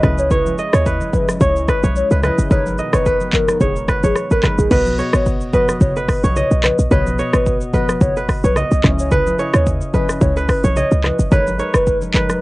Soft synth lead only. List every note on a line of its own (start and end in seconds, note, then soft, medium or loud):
0.19 0.29 C#5 medium
0.31 0.54 B4 loud
0.74 0.84 C#5 medium
1.14 1.26 B4 medium
1.41 1.54 C#5 medium
1.69 1.81 B4 medium
1.96 2.09 C#5 medium
2.24 2.37 B4 medium
2.51 2.64 C#5 loud
2.94 3.17 B4 medium
3.34 3.57 A#4 medium
3.61 3.74 G#4 medium
4.04 4.14 G#4 medium
4.32 4.42 A#4 medium
4.59 4.70 G#4 medium
4.72 4.95 B4 loud
5.14 5.25 C#5 medium
5.54 5.67 B4 medium
5.82 5.94 C#5 medium
6.09 6.22 B4 medium
6.37 6.49 C#5 medium
6.64 6.77 B4 medium
6.92 7.04 C#5 loud
7.35 7.58 B4 medium
7.74 7.98 B4 medium
8.02 8.15 C#5 medium
8.45 8.55 B4 medium
8.72 8.82 D#5 medium
9.00 9.10 C#5 medium
9.12 9.35 B4 loud
9.55 9.65 C#5 medium
9.95 10.07 B4 medium
10.22 10.35 C#5 medium
10.50 10.62 B4 medium
10.77 10.90 C#5 medium
11.05 11.17 B4 medium
11.32 11.45 C#5 loud
11.75 11.98 B4 medium
12.15 12.38 B4 medium